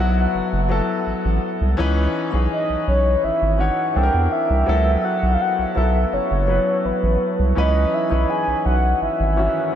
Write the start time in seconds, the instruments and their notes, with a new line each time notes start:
Already playing: grand piano F#3 B3 A4, soft synth lead F#5
0.00 sub bass B1, grand piano E4 F#4
0.35 sub bass F#1
0.53 sub bass F#1
0.69 grand piano F#3 B3 E4 A4
1.07 sub bass A1
1.25 sub bass A1
1.61 sub bass C2
1.77 sub bass C#2, grand piano E3 C#4 D#4 B4
2.31 sub bass B1, grand piano E3 C#4 D#4 G#4
2.52 soft synth lead D#5
2.70 sub bass B1
2.88 sub bass B1, soft synth lead C#5
3.24 sub bass G#1, soft synth lead E5
3.42 sub bass G#1
3.58 grand piano E3 C#4 D#4 C#5, soft synth lead F#5
3.94 sub bass C2, grand piano E3 C4 D4 A4, soft synth lead G5
4.03 grand piano A#4
4.14 sub bass E2
4.32 soft synth lead E5
4.50 sub bass C2
4.66 sub bass C#2, grand piano F#3 B3 E4 A4
5.04 soft synth lead F#5
5.23 sub bass B1
5.34 soft synth lead F5
5.41 soft synth lead F#5
5.59 sub bass B1
5.75 sub bass B1, grand piano F#3 B3 E4 A4, soft synth lead E5
6.13 sub bass F#1, soft synth lead C#5
6.31 sub bass F#1
6.47 grand piano F#3 B3 E4 B4
6.85 sub bass A1, soft synth lead B4
7.03 sub bass A1
7.39 sub bass C2
7.55 sub bass C#2, grand piano E3 C#4 D#4 B4, soft synth lead D#5
7.94 soft synth lead E5
8.09 sub bass B1, grand piano E3 C#4 D#4 B4
8.30 soft synth lead G#5
8.48 sub bass B1
8.66 sub bass B1, soft synth lead F#5
9.02 sub bass G#1, soft synth lead E5
9.20 sub bass G#1
9.36 grand piano D#3 E3 C#4 F#4
9.72 grand piano E3